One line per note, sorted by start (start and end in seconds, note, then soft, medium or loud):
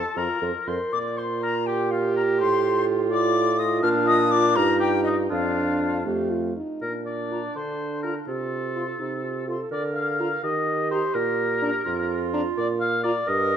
0.00 0.11 A4 medium
0.00 0.15 A4 medium
0.00 0.19 A5 loud
0.16 0.28 F2 medium
0.16 0.27 F4 medium
0.16 0.41 F4 medium
0.16 0.69 A#4 medium
0.16 0.45 A#5 medium
0.41 0.53 F2 medium
0.41 0.53 F4 medium
0.41 0.53 A4 medium
0.67 0.79 F2 medium
0.67 0.79 F4 soft
0.67 0.92 A#4 medium
0.67 0.95 C5 medium
0.67 0.74 C6 medium
0.92 2.42 A#2 medium
0.92 2.35 F4 medium
0.92 1.19 D5 medium
0.92 0.99 D6 medium
1.18 1.42 C5 medium
1.18 1.24 C6 medium
1.42 1.54 A#4 medium
1.42 1.68 A#5 medium
1.66 3.13 G4 medium
1.66 1.91 G4 medium
1.66 1.92 G5 medium
1.91 2.16 F4 medium
1.91 2.15 F5 medium
2.16 2.39 A#4 medium
2.16 2.22 A#5 medium
2.39 3.83 A2 medium
2.39 3.80 F4 medium
2.39 2.86 C5 medium
2.39 2.85 C6 loud
3.11 5.30 F4 medium
3.11 3.56 D5 loud
3.11 3.60 D6 loud
3.59 3.84 D#5 medium
3.59 3.82 D#6 loud
3.83 4.58 A#2 medium
3.83 4.58 D4 medium
3.83 4.07 F5 loud
3.83 3.89 F6 loud
4.07 4.18 D#5 loud
4.07 4.33 D#6 loud
4.31 4.57 D5 loud
4.31 4.57 D6 loud
4.56 5.30 G2 medium
4.56 5.29 D#4 medium
4.56 4.79 A#4 medium
4.56 4.80 A#5 loud
4.80 4.91 G4 medium
4.80 5.03 G5 loud
5.04 5.16 D#4 medium
5.04 5.10 D#5 medium
5.29 6.04 F2 medium
5.29 6.04 D4 medium
5.29 5.99 D4 medium
5.29 6.04 F4 medium
5.29 6.04 F5 medium
6.05 6.56 F2 medium
6.05 6.55 A3 medium
6.05 6.32 G4 medium
6.31 6.56 F4 medium
6.56 6.81 D#4 medium
6.82 7.44 A#2 soft
6.82 8.29 D4 soft
6.82 6.93 A#4 medium
7.06 7.55 D5 medium
7.31 7.40 F4 soft
7.31 7.43 A#5 soft
7.56 8.16 D3 soft
7.56 8.02 C5 medium
8.03 8.12 F4 soft
8.03 8.14 A#4 medium
8.03 8.15 A#5 soft
8.27 8.89 C3 medium
8.27 9.01 F4 medium
8.27 9.46 A4 medium
8.76 8.85 F4 medium
8.76 8.88 C6 medium
8.99 9.60 C3 medium
8.99 9.25 D#4 soft
9.23 9.48 F4 medium
9.47 9.56 F4 medium
9.47 9.71 A4 medium
9.47 9.60 C6 medium
9.71 10.32 D3 medium
9.71 10.42 A#4 medium
9.71 9.83 D5 medium
9.95 10.43 F5 medium
10.20 10.28 F4 medium
10.20 10.31 A#5 medium
10.43 11.03 D#3 medium
10.43 11.83 G4 medium
10.43 10.90 D#5 medium
10.91 11.00 G4 medium
10.91 11.16 C5 medium
10.91 11.03 A#5 medium
11.14 11.74 A#2 medium
11.14 12.33 A#4 medium
11.62 11.71 D4 medium
11.62 11.73 A#5 medium
11.85 12.46 F2 medium
11.85 12.98 F4 medium
12.33 12.42 D4 medium
12.33 12.45 A#5 medium
12.57 13.17 A#2 medium
12.57 12.68 D5 medium
12.80 13.03 F5 loud
13.03 13.12 F4 medium
13.03 13.30 D5 medium
13.03 13.16 A#5 medium
13.27 13.57 G2 medium
13.27 13.57 A#4 medium
13.27 13.57 D#5 loud